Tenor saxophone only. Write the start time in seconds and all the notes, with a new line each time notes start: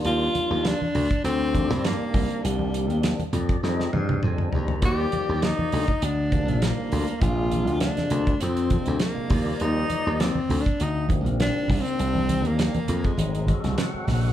0.06 F4
0.67 D4
1.25 C4
1.85 A#3
2.43 G3
4.85 G4
5.44 D#4
6.04 D4
6.63 A#3
7.22 F4
7.81 D4
8.42 C4
9.01 A#3
9.62 D#4
10.21 C4
10.61 D4
10.82 D#4
11.42 D4
11.81 C4
12.48 A#3
13.06 G#3